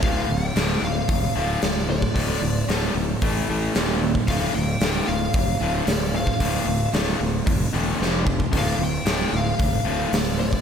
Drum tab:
HH |o---o---o---o---|o---o---o---o---|o---o---o---o---|o---o---o-------|
SD |----o-------o---|----o-------o---|----o-------o---|----o-------o---|
BD |o-------o------o|o-------o------o|o-------o------o|o-------o-----oo|

HH |o---o---o---o---|
SD |----o-------o---|
BD |o-------o------o|